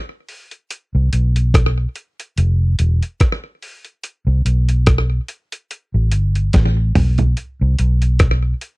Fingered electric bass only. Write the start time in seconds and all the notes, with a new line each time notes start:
0.95 C2
1.13 B1
2.38 F1
2.80 E1
4.27 C2
4.45 B1
5.94 A1
6.13 G1
6.54 A1
6.97 B1
7.61 C2
7.79 B1